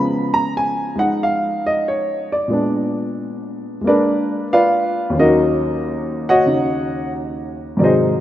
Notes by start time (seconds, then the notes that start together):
Already playing: C#3 F3 G#3 B3 B5
0.34 A#5
0.57 G#5
0.96 G#3 D#4 F#5
1.23 F5
1.66 D#5
1.88 C#5
2.32 D5
2.48 A#2 G#3 B3
2.53 D4
3.81 G#3 A#3
3.87 D4 A#4 B4 D5
4.53 F4 B4 D5 F5
5.10 D#2 D#3
5.17 F#3 C#4 D#4 F#4 A#4 D#5
6.29 F#4 C#5 D#5 F#5
6.46 C#3 D#4 F#4
7.77 G#2 C3 D#3 D5
7.82 F#3 D#4 G#4 C5 D#5